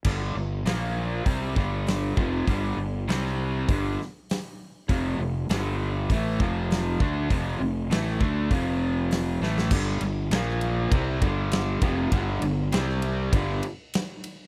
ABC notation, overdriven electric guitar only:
X:1
M:4/4
L:1/8
Q:1/4=100
K:Flyd
V:1 name="Overdriven electric guitar" clef=bass
[G,,D,G,] [G,,D,] [_B,,F,_B,]2 [C,G,C] [G,,D,G,]2 [F,,C,F,] | [G,,D,G,] [G,,D,] [C,G,C]2 [G,,D,G,] z3 | [F,,C,F,] [F,,C,] [G,,D,G,]2 [A,,E,A,] [F,,C,F,]2 [D,A,D] | [F,,C,F,] [F,,C,] [A,,E,A,] [D,A,D] [F,,C,F,]3 [A,,E,A,] |
[G,,D,G,] [G,,D,] [_B,,F,_B,]2 [C,G,C] [G,,D,G,]2 [F,,C,F,] | [G,,D,G,] [G,,D,] [C,G,C]2 [G,,D,G,] z3 |]